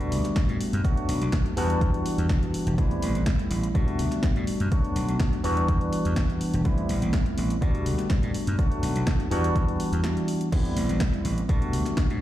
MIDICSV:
0, 0, Header, 1, 5, 480
1, 0, Start_track
1, 0, Key_signature, 1, "major"
1, 0, Tempo, 483871
1, 839, Time_signature, 4, 2, 24, 8
1, 12115, End_track
2, 0, Start_track
2, 0, Title_t, "Tine electric piano"
2, 0, Program_c, 0, 4
2, 0, Note_on_c, 0, 55, 78
2, 0, Note_on_c, 0, 57, 71
2, 0, Note_on_c, 0, 59, 72
2, 0, Note_on_c, 0, 62, 70
2, 0, Note_on_c, 0, 66, 88
2, 790, Note_off_c, 0, 55, 0
2, 792, Note_off_c, 0, 57, 0
2, 794, Note_off_c, 0, 59, 0
2, 796, Note_off_c, 0, 62, 0
2, 798, Note_off_c, 0, 66, 0
2, 830, Note_on_c, 0, 54, 77
2, 835, Note_on_c, 0, 57, 69
2, 839, Note_on_c, 0, 59, 69
2, 842, Note_on_c, 0, 62, 68
2, 846, Note_on_c, 0, 66, 83
2, 1509, Note_off_c, 0, 54, 0
2, 1511, Note_off_c, 0, 57, 0
2, 1513, Note_off_c, 0, 59, 0
2, 1515, Note_off_c, 0, 62, 0
2, 1517, Note_off_c, 0, 66, 0
2, 1551, Note_on_c, 0, 52, 90
2, 1555, Note_on_c, 0, 55, 85
2, 1559, Note_on_c, 0, 59, 84
2, 1564, Note_on_c, 0, 62, 83
2, 1567, Note_on_c, 0, 66, 101
2, 2709, Note_off_c, 0, 52, 0
2, 2711, Note_off_c, 0, 55, 0
2, 2713, Note_off_c, 0, 59, 0
2, 2716, Note_off_c, 0, 62, 0
2, 2717, Note_off_c, 0, 66, 0
2, 2752, Note_on_c, 0, 55, 77
2, 2756, Note_on_c, 0, 57, 69
2, 2758, Note_on_c, 0, 59, 70
2, 2763, Note_on_c, 0, 60, 69
2, 2767, Note_on_c, 0, 64, 84
2, 3670, Note_off_c, 0, 55, 0
2, 3672, Note_off_c, 0, 57, 0
2, 3673, Note_off_c, 0, 59, 0
2, 3675, Note_off_c, 0, 60, 0
2, 3677, Note_off_c, 0, 64, 0
2, 3712, Note_on_c, 0, 55, 76
2, 3717, Note_on_c, 0, 57, 68
2, 3720, Note_on_c, 0, 59, 70
2, 3723, Note_on_c, 0, 62, 70
2, 3728, Note_on_c, 0, 66, 87
2, 4630, Note_off_c, 0, 55, 0
2, 4632, Note_off_c, 0, 57, 0
2, 4634, Note_off_c, 0, 59, 0
2, 4636, Note_off_c, 0, 62, 0
2, 4638, Note_off_c, 0, 66, 0
2, 4673, Note_on_c, 0, 54, 79
2, 4676, Note_on_c, 0, 57, 69
2, 4680, Note_on_c, 0, 59, 72
2, 4684, Note_on_c, 0, 62, 71
2, 4688, Note_on_c, 0, 66, 86
2, 5350, Note_off_c, 0, 54, 0
2, 5352, Note_off_c, 0, 57, 0
2, 5354, Note_off_c, 0, 59, 0
2, 5356, Note_off_c, 0, 62, 0
2, 5358, Note_off_c, 0, 66, 0
2, 5391, Note_on_c, 0, 52, 92
2, 5395, Note_on_c, 0, 55, 81
2, 5399, Note_on_c, 0, 59, 85
2, 5403, Note_on_c, 0, 62, 82
2, 5407, Note_on_c, 0, 66, 100
2, 6549, Note_off_c, 0, 52, 0
2, 6552, Note_off_c, 0, 55, 0
2, 6553, Note_off_c, 0, 59, 0
2, 6555, Note_off_c, 0, 62, 0
2, 6557, Note_off_c, 0, 66, 0
2, 6591, Note_on_c, 0, 55, 77
2, 6594, Note_on_c, 0, 57, 73
2, 6598, Note_on_c, 0, 59, 73
2, 6603, Note_on_c, 0, 60, 72
2, 6607, Note_on_c, 0, 64, 83
2, 7509, Note_off_c, 0, 55, 0
2, 7511, Note_off_c, 0, 57, 0
2, 7513, Note_off_c, 0, 59, 0
2, 7515, Note_off_c, 0, 60, 0
2, 7517, Note_off_c, 0, 64, 0
2, 7551, Note_on_c, 0, 55, 80
2, 7554, Note_on_c, 0, 57, 70
2, 7559, Note_on_c, 0, 59, 71
2, 7563, Note_on_c, 0, 62, 69
2, 7567, Note_on_c, 0, 66, 85
2, 8470, Note_off_c, 0, 55, 0
2, 8471, Note_off_c, 0, 57, 0
2, 8473, Note_off_c, 0, 59, 0
2, 8476, Note_off_c, 0, 62, 0
2, 8478, Note_off_c, 0, 66, 0
2, 8511, Note_on_c, 0, 54, 80
2, 8516, Note_on_c, 0, 57, 73
2, 8519, Note_on_c, 0, 59, 69
2, 8522, Note_on_c, 0, 62, 72
2, 8528, Note_on_c, 0, 66, 88
2, 9190, Note_off_c, 0, 54, 0
2, 9192, Note_off_c, 0, 57, 0
2, 9193, Note_off_c, 0, 59, 0
2, 9195, Note_off_c, 0, 62, 0
2, 9198, Note_off_c, 0, 66, 0
2, 9231, Note_on_c, 0, 52, 95
2, 9235, Note_on_c, 0, 55, 84
2, 9238, Note_on_c, 0, 59, 84
2, 9242, Note_on_c, 0, 62, 83
2, 9246, Note_on_c, 0, 66, 100
2, 10389, Note_off_c, 0, 52, 0
2, 10391, Note_off_c, 0, 55, 0
2, 10393, Note_off_c, 0, 59, 0
2, 10395, Note_off_c, 0, 62, 0
2, 10397, Note_off_c, 0, 66, 0
2, 10432, Note_on_c, 0, 55, 78
2, 10437, Note_on_c, 0, 57, 72
2, 10441, Note_on_c, 0, 59, 74
2, 10446, Note_on_c, 0, 60, 73
2, 10449, Note_on_c, 0, 64, 85
2, 11350, Note_off_c, 0, 55, 0
2, 11352, Note_off_c, 0, 57, 0
2, 11354, Note_off_c, 0, 59, 0
2, 11357, Note_off_c, 0, 60, 0
2, 11358, Note_off_c, 0, 64, 0
2, 11392, Note_on_c, 0, 55, 77
2, 11396, Note_on_c, 0, 57, 69
2, 11402, Note_on_c, 0, 59, 71
2, 11404, Note_on_c, 0, 62, 69
2, 11409, Note_on_c, 0, 66, 86
2, 12115, Note_off_c, 0, 55, 0
2, 12115, Note_off_c, 0, 57, 0
2, 12115, Note_off_c, 0, 59, 0
2, 12115, Note_off_c, 0, 62, 0
2, 12115, Note_off_c, 0, 66, 0
2, 12115, End_track
3, 0, Start_track
3, 0, Title_t, "Slap bass"
3, 0, Program_c, 1, 36
3, 0, Note_on_c, 1, 47, 93
3, 121, Note_on_c, 1, 38, 101
3, 136, Note_off_c, 1, 47, 0
3, 203, Note_off_c, 1, 38, 0
3, 486, Note_on_c, 1, 45, 90
3, 561, Note_off_c, 1, 45, 0
3, 726, Note_on_c, 1, 42, 100
3, 801, Note_off_c, 1, 42, 0
3, 1078, Note_on_c, 1, 35, 79
3, 1162, Note_off_c, 1, 35, 0
3, 1204, Note_on_c, 1, 35, 83
3, 1280, Note_off_c, 1, 35, 0
3, 1558, Note_on_c, 1, 40, 90
3, 1722, Note_off_c, 1, 40, 0
3, 1798, Note_on_c, 1, 40, 81
3, 1882, Note_off_c, 1, 40, 0
3, 2164, Note_on_c, 1, 40, 78
3, 2240, Note_off_c, 1, 40, 0
3, 2280, Note_on_c, 1, 28, 90
3, 2363, Note_off_c, 1, 28, 0
3, 2645, Note_on_c, 1, 28, 101
3, 2720, Note_off_c, 1, 28, 0
3, 2760, Note_on_c, 1, 33, 94
3, 2922, Note_off_c, 1, 33, 0
3, 3001, Note_on_c, 1, 33, 78
3, 3083, Note_off_c, 1, 33, 0
3, 3127, Note_on_c, 1, 33, 82
3, 3201, Note_off_c, 1, 33, 0
3, 3481, Note_on_c, 1, 33, 88
3, 3643, Note_off_c, 1, 33, 0
3, 3720, Note_on_c, 1, 47, 91
3, 3963, Note_on_c, 1, 38, 100
3, 3978, Note_off_c, 1, 47, 0
3, 4044, Note_off_c, 1, 38, 0
3, 4328, Note_on_c, 1, 45, 94
3, 4402, Note_off_c, 1, 45, 0
3, 4567, Note_on_c, 1, 42, 102
3, 4641, Note_off_c, 1, 42, 0
3, 4919, Note_on_c, 1, 35, 81
3, 5002, Note_off_c, 1, 35, 0
3, 5046, Note_on_c, 1, 35, 81
3, 5121, Note_off_c, 1, 35, 0
3, 5400, Note_on_c, 1, 40, 90
3, 5562, Note_off_c, 1, 40, 0
3, 5640, Note_on_c, 1, 40, 80
3, 5723, Note_off_c, 1, 40, 0
3, 6006, Note_on_c, 1, 40, 77
3, 6081, Note_off_c, 1, 40, 0
3, 6119, Note_on_c, 1, 28, 92
3, 6202, Note_off_c, 1, 28, 0
3, 6485, Note_on_c, 1, 28, 99
3, 6560, Note_off_c, 1, 28, 0
3, 6599, Note_on_c, 1, 33, 93
3, 6762, Note_off_c, 1, 33, 0
3, 6839, Note_on_c, 1, 33, 81
3, 6922, Note_off_c, 1, 33, 0
3, 6967, Note_on_c, 1, 33, 85
3, 7041, Note_off_c, 1, 33, 0
3, 7322, Note_on_c, 1, 33, 89
3, 7483, Note_off_c, 1, 33, 0
3, 7559, Note_on_c, 1, 47, 96
3, 7801, Note_on_c, 1, 38, 104
3, 7816, Note_off_c, 1, 47, 0
3, 7884, Note_off_c, 1, 38, 0
3, 8166, Note_on_c, 1, 45, 90
3, 8241, Note_off_c, 1, 45, 0
3, 8407, Note_on_c, 1, 42, 97
3, 8481, Note_off_c, 1, 42, 0
3, 8758, Note_on_c, 1, 35, 82
3, 8842, Note_off_c, 1, 35, 0
3, 8884, Note_on_c, 1, 35, 82
3, 8960, Note_off_c, 1, 35, 0
3, 9238, Note_on_c, 1, 40, 93
3, 9401, Note_off_c, 1, 40, 0
3, 9481, Note_on_c, 1, 40, 82
3, 9563, Note_off_c, 1, 40, 0
3, 9845, Note_on_c, 1, 40, 75
3, 9920, Note_off_c, 1, 40, 0
3, 10440, Note_on_c, 1, 33, 95
3, 10602, Note_off_c, 1, 33, 0
3, 10678, Note_on_c, 1, 33, 79
3, 10762, Note_off_c, 1, 33, 0
3, 10805, Note_on_c, 1, 33, 81
3, 10880, Note_off_c, 1, 33, 0
3, 11159, Note_on_c, 1, 33, 89
3, 11322, Note_off_c, 1, 33, 0
3, 11400, Note_on_c, 1, 47, 96
3, 11640, Note_on_c, 1, 38, 99
3, 11655, Note_off_c, 1, 47, 0
3, 11723, Note_off_c, 1, 38, 0
3, 12004, Note_on_c, 1, 45, 93
3, 12080, Note_off_c, 1, 45, 0
3, 12115, End_track
4, 0, Start_track
4, 0, Title_t, "Muted slap bass strokes"
4, 600, Note_on_c, 9, 29, 42
4, 699, Note_off_c, 9, 29, 0
4, 965, Note_on_c, 9, 29, 43
4, 1065, Note_off_c, 9, 29, 0
4, 2519, Note_on_c, 9, 29, 42
4, 2618, Note_off_c, 9, 29, 0
4, 4442, Note_on_c, 9, 29, 43
4, 4541, Note_off_c, 9, 29, 0
4, 4807, Note_on_c, 9, 29, 44
4, 4906, Note_off_c, 9, 29, 0
4, 6361, Note_on_c, 9, 29, 45
4, 6461, Note_off_c, 9, 29, 0
4, 8280, Note_on_c, 9, 29, 43
4, 8379, Note_off_c, 9, 29, 0
4, 8645, Note_on_c, 9, 29, 43
4, 8744, Note_off_c, 9, 29, 0
4, 12115, End_track
5, 0, Start_track
5, 0, Title_t, "Drums"
5, 6, Note_on_c, 9, 42, 25
5, 105, Note_off_c, 9, 42, 0
5, 119, Note_on_c, 9, 46, 102
5, 218, Note_off_c, 9, 46, 0
5, 241, Note_on_c, 9, 38, 37
5, 246, Note_on_c, 9, 42, 50
5, 340, Note_off_c, 9, 38, 0
5, 346, Note_off_c, 9, 42, 0
5, 355, Note_on_c, 9, 38, 118
5, 359, Note_on_c, 9, 36, 117
5, 361, Note_on_c, 9, 42, 50
5, 455, Note_off_c, 9, 38, 0
5, 459, Note_off_c, 9, 36, 0
5, 460, Note_off_c, 9, 42, 0
5, 486, Note_on_c, 9, 42, 25
5, 586, Note_off_c, 9, 42, 0
5, 601, Note_on_c, 9, 46, 93
5, 700, Note_off_c, 9, 46, 0
5, 727, Note_on_c, 9, 42, 50
5, 826, Note_off_c, 9, 42, 0
5, 839, Note_on_c, 9, 36, 116
5, 840, Note_on_c, 9, 42, 50
5, 938, Note_off_c, 9, 36, 0
5, 940, Note_off_c, 9, 42, 0
5, 966, Note_on_c, 9, 42, 24
5, 1065, Note_off_c, 9, 42, 0
5, 1079, Note_on_c, 9, 46, 105
5, 1178, Note_off_c, 9, 46, 0
5, 1206, Note_on_c, 9, 42, 47
5, 1305, Note_off_c, 9, 42, 0
5, 1313, Note_on_c, 9, 38, 117
5, 1319, Note_on_c, 9, 36, 118
5, 1319, Note_on_c, 9, 42, 50
5, 1413, Note_off_c, 9, 38, 0
5, 1418, Note_off_c, 9, 36, 0
5, 1418, Note_off_c, 9, 42, 0
5, 1446, Note_on_c, 9, 42, 23
5, 1545, Note_off_c, 9, 42, 0
5, 1559, Note_on_c, 9, 46, 94
5, 1658, Note_off_c, 9, 46, 0
5, 1686, Note_on_c, 9, 42, 48
5, 1785, Note_off_c, 9, 42, 0
5, 1799, Note_on_c, 9, 36, 114
5, 1800, Note_on_c, 9, 42, 47
5, 1898, Note_off_c, 9, 36, 0
5, 1899, Note_off_c, 9, 42, 0
5, 1927, Note_on_c, 9, 42, 24
5, 2026, Note_off_c, 9, 42, 0
5, 2040, Note_on_c, 9, 46, 102
5, 2140, Note_off_c, 9, 46, 0
5, 2166, Note_on_c, 9, 42, 49
5, 2265, Note_off_c, 9, 42, 0
5, 2275, Note_on_c, 9, 38, 114
5, 2279, Note_on_c, 9, 36, 119
5, 2281, Note_on_c, 9, 42, 48
5, 2375, Note_off_c, 9, 38, 0
5, 2378, Note_off_c, 9, 36, 0
5, 2380, Note_off_c, 9, 42, 0
5, 2408, Note_on_c, 9, 42, 24
5, 2508, Note_off_c, 9, 42, 0
5, 2521, Note_on_c, 9, 46, 90
5, 2620, Note_off_c, 9, 46, 0
5, 2647, Note_on_c, 9, 42, 51
5, 2746, Note_off_c, 9, 42, 0
5, 2759, Note_on_c, 9, 36, 113
5, 2761, Note_on_c, 9, 42, 51
5, 2858, Note_off_c, 9, 36, 0
5, 2860, Note_off_c, 9, 42, 0
5, 2888, Note_on_c, 9, 42, 25
5, 2987, Note_off_c, 9, 42, 0
5, 3001, Note_on_c, 9, 46, 104
5, 3100, Note_off_c, 9, 46, 0
5, 3127, Note_on_c, 9, 42, 47
5, 3226, Note_off_c, 9, 42, 0
5, 3235, Note_on_c, 9, 38, 115
5, 3239, Note_on_c, 9, 36, 117
5, 3241, Note_on_c, 9, 42, 50
5, 3334, Note_off_c, 9, 38, 0
5, 3339, Note_off_c, 9, 36, 0
5, 3340, Note_off_c, 9, 42, 0
5, 3367, Note_on_c, 9, 42, 24
5, 3466, Note_off_c, 9, 42, 0
5, 3479, Note_on_c, 9, 46, 92
5, 3578, Note_off_c, 9, 46, 0
5, 3606, Note_on_c, 9, 42, 48
5, 3705, Note_off_c, 9, 42, 0
5, 3720, Note_on_c, 9, 36, 110
5, 3720, Note_on_c, 9, 42, 49
5, 3819, Note_off_c, 9, 36, 0
5, 3819, Note_off_c, 9, 42, 0
5, 3846, Note_on_c, 9, 42, 24
5, 3946, Note_off_c, 9, 42, 0
5, 3959, Note_on_c, 9, 46, 98
5, 4058, Note_off_c, 9, 46, 0
5, 4080, Note_on_c, 9, 38, 34
5, 4085, Note_on_c, 9, 42, 48
5, 4179, Note_off_c, 9, 38, 0
5, 4184, Note_off_c, 9, 42, 0
5, 4193, Note_on_c, 9, 38, 110
5, 4198, Note_on_c, 9, 42, 50
5, 4199, Note_on_c, 9, 36, 113
5, 4292, Note_off_c, 9, 38, 0
5, 4298, Note_off_c, 9, 42, 0
5, 4299, Note_off_c, 9, 36, 0
5, 4324, Note_on_c, 9, 42, 24
5, 4423, Note_off_c, 9, 42, 0
5, 4438, Note_on_c, 9, 46, 85
5, 4537, Note_off_c, 9, 46, 0
5, 4564, Note_on_c, 9, 42, 51
5, 4664, Note_off_c, 9, 42, 0
5, 4679, Note_on_c, 9, 36, 109
5, 4679, Note_on_c, 9, 42, 51
5, 4778, Note_off_c, 9, 42, 0
5, 4779, Note_off_c, 9, 36, 0
5, 4806, Note_on_c, 9, 42, 26
5, 4905, Note_off_c, 9, 42, 0
5, 4920, Note_on_c, 9, 46, 97
5, 5019, Note_off_c, 9, 46, 0
5, 5045, Note_on_c, 9, 42, 51
5, 5144, Note_off_c, 9, 42, 0
5, 5154, Note_on_c, 9, 38, 115
5, 5159, Note_on_c, 9, 36, 114
5, 5159, Note_on_c, 9, 42, 52
5, 5253, Note_off_c, 9, 38, 0
5, 5258, Note_off_c, 9, 36, 0
5, 5259, Note_off_c, 9, 42, 0
5, 5286, Note_on_c, 9, 42, 24
5, 5385, Note_off_c, 9, 42, 0
5, 5398, Note_on_c, 9, 46, 86
5, 5498, Note_off_c, 9, 46, 0
5, 5525, Note_on_c, 9, 42, 48
5, 5624, Note_off_c, 9, 42, 0
5, 5639, Note_on_c, 9, 36, 107
5, 5639, Note_on_c, 9, 42, 52
5, 5738, Note_off_c, 9, 36, 0
5, 5738, Note_off_c, 9, 42, 0
5, 5765, Note_on_c, 9, 42, 25
5, 5864, Note_off_c, 9, 42, 0
5, 5879, Note_on_c, 9, 46, 96
5, 5978, Note_off_c, 9, 46, 0
5, 6004, Note_on_c, 9, 42, 50
5, 6103, Note_off_c, 9, 42, 0
5, 6113, Note_on_c, 9, 38, 112
5, 6119, Note_on_c, 9, 36, 110
5, 6119, Note_on_c, 9, 42, 51
5, 6212, Note_off_c, 9, 38, 0
5, 6218, Note_off_c, 9, 42, 0
5, 6219, Note_off_c, 9, 36, 0
5, 6246, Note_on_c, 9, 42, 24
5, 6345, Note_off_c, 9, 42, 0
5, 6357, Note_on_c, 9, 46, 83
5, 6456, Note_off_c, 9, 46, 0
5, 6483, Note_on_c, 9, 42, 53
5, 6583, Note_off_c, 9, 42, 0
5, 6598, Note_on_c, 9, 42, 53
5, 6599, Note_on_c, 9, 36, 109
5, 6697, Note_off_c, 9, 42, 0
5, 6698, Note_off_c, 9, 36, 0
5, 6723, Note_on_c, 9, 42, 26
5, 6822, Note_off_c, 9, 42, 0
5, 6838, Note_on_c, 9, 46, 95
5, 6937, Note_off_c, 9, 46, 0
5, 6965, Note_on_c, 9, 42, 50
5, 7064, Note_off_c, 9, 42, 0
5, 7073, Note_on_c, 9, 38, 116
5, 7078, Note_on_c, 9, 42, 54
5, 7079, Note_on_c, 9, 36, 112
5, 7172, Note_off_c, 9, 38, 0
5, 7177, Note_off_c, 9, 42, 0
5, 7178, Note_off_c, 9, 36, 0
5, 7203, Note_on_c, 9, 42, 25
5, 7302, Note_off_c, 9, 42, 0
5, 7317, Note_on_c, 9, 46, 85
5, 7416, Note_off_c, 9, 46, 0
5, 7444, Note_on_c, 9, 42, 52
5, 7543, Note_off_c, 9, 42, 0
5, 7559, Note_on_c, 9, 36, 111
5, 7559, Note_on_c, 9, 42, 51
5, 7658, Note_off_c, 9, 36, 0
5, 7658, Note_off_c, 9, 42, 0
5, 7685, Note_on_c, 9, 42, 26
5, 7784, Note_off_c, 9, 42, 0
5, 7798, Note_on_c, 9, 46, 95
5, 7897, Note_off_c, 9, 46, 0
5, 7919, Note_on_c, 9, 38, 34
5, 7924, Note_on_c, 9, 42, 52
5, 8018, Note_off_c, 9, 38, 0
5, 8023, Note_off_c, 9, 42, 0
5, 8032, Note_on_c, 9, 38, 110
5, 8038, Note_on_c, 9, 42, 53
5, 8039, Note_on_c, 9, 36, 109
5, 8131, Note_off_c, 9, 38, 0
5, 8137, Note_off_c, 9, 42, 0
5, 8138, Note_off_c, 9, 36, 0
5, 8164, Note_on_c, 9, 42, 26
5, 8263, Note_off_c, 9, 42, 0
5, 8278, Note_on_c, 9, 46, 84
5, 8377, Note_off_c, 9, 46, 0
5, 8405, Note_on_c, 9, 42, 55
5, 8504, Note_off_c, 9, 42, 0
5, 8519, Note_on_c, 9, 36, 115
5, 8519, Note_on_c, 9, 42, 54
5, 8618, Note_off_c, 9, 42, 0
5, 8619, Note_off_c, 9, 36, 0
5, 8646, Note_on_c, 9, 42, 27
5, 8745, Note_off_c, 9, 42, 0
5, 8759, Note_on_c, 9, 46, 97
5, 8858, Note_off_c, 9, 46, 0
5, 8885, Note_on_c, 9, 42, 53
5, 8984, Note_off_c, 9, 42, 0
5, 8995, Note_on_c, 9, 38, 120
5, 8999, Note_on_c, 9, 36, 118
5, 9000, Note_on_c, 9, 42, 54
5, 9094, Note_off_c, 9, 38, 0
5, 9099, Note_off_c, 9, 36, 0
5, 9099, Note_off_c, 9, 42, 0
5, 9125, Note_on_c, 9, 42, 26
5, 9224, Note_off_c, 9, 42, 0
5, 9240, Note_on_c, 9, 46, 89
5, 9339, Note_off_c, 9, 46, 0
5, 9367, Note_on_c, 9, 42, 52
5, 9466, Note_off_c, 9, 42, 0
5, 9479, Note_on_c, 9, 36, 113
5, 9481, Note_on_c, 9, 42, 53
5, 9578, Note_off_c, 9, 36, 0
5, 9580, Note_off_c, 9, 42, 0
5, 9607, Note_on_c, 9, 42, 27
5, 9706, Note_off_c, 9, 42, 0
5, 9720, Note_on_c, 9, 46, 95
5, 9819, Note_off_c, 9, 46, 0
5, 9848, Note_on_c, 9, 42, 53
5, 9947, Note_off_c, 9, 42, 0
5, 9956, Note_on_c, 9, 38, 118
5, 9961, Note_on_c, 9, 42, 54
5, 10055, Note_off_c, 9, 38, 0
5, 10060, Note_off_c, 9, 42, 0
5, 10088, Note_on_c, 9, 42, 27
5, 10187, Note_off_c, 9, 42, 0
5, 10198, Note_on_c, 9, 46, 86
5, 10298, Note_off_c, 9, 46, 0
5, 10326, Note_on_c, 9, 42, 56
5, 10425, Note_off_c, 9, 42, 0
5, 10440, Note_on_c, 9, 36, 113
5, 10440, Note_on_c, 9, 42, 54
5, 10440, Note_on_c, 9, 49, 76
5, 10539, Note_off_c, 9, 36, 0
5, 10540, Note_off_c, 9, 42, 0
5, 10540, Note_off_c, 9, 49, 0
5, 10567, Note_on_c, 9, 42, 27
5, 10666, Note_off_c, 9, 42, 0
5, 10680, Note_on_c, 9, 46, 104
5, 10779, Note_off_c, 9, 46, 0
5, 10806, Note_on_c, 9, 42, 52
5, 10905, Note_off_c, 9, 42, 0
5, 10913, Note_on_c, 9, 38, 126
5, 10918, Note_on_c, 9, 42, 57
5, 10920, Note_on_c, 9, 36, 115
5, 11012, Note_off_c, 9, 38, 0
5, 11018, Note_off_c, 9, 42, 0
5, 11019, Note_off_c, 9, 36, 0
5, 11046, Note_on_c, 9, 42, 26
5, 11145, Note_off_c, 9, 42, 0
5, 11159, Note_on_c, 9, 46, 92
5, 11258, Note_off_c, 9, 46, 0
5, 11287, Note_on_c, 9, 42, 53
5, 11386, Note_off_c, 9, 42, 0
5, 11400, Note_on_c, 9, 36, 115
5, 11400, Note_on_c, 9, 42, 54
5, 11499, Note_off_c, 9, 36, 0
5, 11499, Note_off_c, 9, 42, 0
5, 11526, Note_on_c, 9, 42, 27
5, 11625, Note_off_c, 9, 42, 0
5, 11640, Note_on_c, 9, 46, 104
5, 11739, Note_off_c, 9, 46, 0
5, 11760, Note_on_c, 9, 38, 37
5, 11766, Note_on_c, 9, 42, 53
5, 11859, Note_off_c, 9, 38, 0
5, 11865, Note_off_c, 9, 42, 0
5, 11874, Note_on_c, 9, 38, 121
5, 11880, Note_on_c, 9, 36, 116
5, 11880, Note_on_c, 9, 42, 56
5, 11973, Note_off_c, 9, 38, 0
5, 11979, Note_off_c, 9, 36, 0
5, 11979, Note_off_c, 9, 42, 0
5, 12006, Note_on_c, 9, 42, 26
5, 12106, Note_off_c, 9, 42, 0
5, 12115, End_track
0, 0, End_of_file